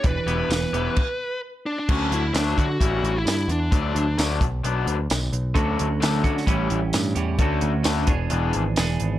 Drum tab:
CC |--------x-------|x---------------|----------------|----------------|
HH |x-x-x-x---------|--x-x-x-x-x-x-x-|x-x-x-x-x-x-x-x-|x-x-x-x-x-x-x-x-|
TB |----x-----------|----x-------x---|----x-------x---|----x-------x---|
SD |----o-----------|----o-------o---|----o-------o---|----o--o----o---|
BD |o-------o-------|o-----o-o-------|o-----o---------|o-----o-o-------|

CC |----------------|
HH |x-x-x-x-x-x-x-x-|
TB |----x-------x---|
SD |----o-------o---|
BD |o-----o---------|